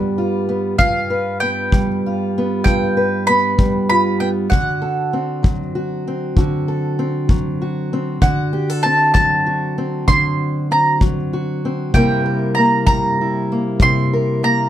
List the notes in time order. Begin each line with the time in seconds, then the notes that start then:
Already playing: G2 G3 B3 F4 B4
0.18 F4
0.49 B3
0.79 G2 F4 F5, kick
1.10 B4
1.40 B3 G5
1.72 G3, kick
2.06 F4
2.38 B3
2.64 G2 F4 G5, kick
2.97 B4
3.27 B3 B5
3.58 G3, kick
3.90 F4 B5
4.20 B3 G5
4.50 D3 F#4 F#5, kick
4.82 A4
5.13 C4
5.43 F#3, kick
5.75 F#4
6.08 C4
6.37 D3 F#4, kick
6.68 A4
6.99 C4
7.29 F#3, kick
7.62 F#4
7.93 C4
8.22 D3 F#4 F#5, kick
8.53 G4
8.70 A4
8.83 C4 A5
9.14 F#3 A5, kick
9.46 F#4
9.78 C4
10.08 D3 F#4 C6, kick
10.71 C4 A#5
11.01 F#3, kick
11.33 F#4
11.65 C4
11.94 C3 G3 A#3 E4 A#4 G5, kick
12.26 A#4
12.55 A#3 A#5
12.87 G3 A#5, kick
13.21 E4
13.52 A#3
13.80 C3 E4 C6, kick
14.13 A#4
14.43 A#3 A#5